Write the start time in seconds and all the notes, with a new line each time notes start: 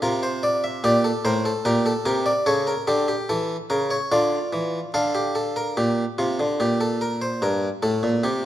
0.02 C3 F4 A#4
0.23 C5
0.43 D5
0.64 E5
0.84 A#2 G4 D5
1.04 A4
1.25 A2 A#4 C5
1.45 A4
1.65 A#2 G4 A#4
1.86 A4
2.05 C3 G4 A#4
2.26 D5
2.46 C#3 A4 C#5
2.67 A#4
2.87 D3 G4 A4
3.08 G4
3.29 E3 A4
3.70 C#3 A#4
3.90 C#5
4.12 D3 F4 D5
4.53 E3
4.94 D3 A4 F5
5.15 G4
5.35 A4
5.56 A#4
5.77 A#2 G4
6.18 C3 F4
6.40 D3
6.60 A#2 G4
6.81 A4
7.01 A#4
7.22 C5
7.42 G2 A#4
7.83 A2 A4
8.03 A#2
8.24 C3 G4